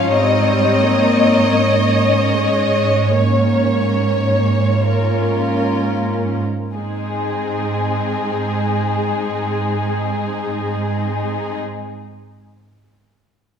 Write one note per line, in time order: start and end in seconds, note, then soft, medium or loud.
0.00 0.12 C#4 soft
0.00 0.12 F4 soft
0.00 4.84 C#5 soft
0.00 0.13 F5 medium
0.11 6.40 G#2 soft
0.11 0.79 G3 soft
0.11 1.54 C4 soft
0.11 1.53 D#4 soft
0.11 3.06 D#5 medium
0.81 1.53 A#3 soft
1.54 2.29 A#3 soft
1.54 3.09 C#4 soft
2.30 3.09 G#3 soft
3.09 4.82 A#3 soft
3.09 4.81 C#4 soft
3.09 5.82 C#5 soft
4.83 6.40 A#3 soft
4.83 6.40 C#4 soft
4.83 6.44 F4 soft
4.83 6.44 A#4 soft
6.74 11.61 G#2 soft
6.74 11.61 G#3 soft
6.74 11.60 C4 soft
6.74 11.60 D#4 soft
6.74 11.59 G#4 soft
6.74 11.61 G#4 soft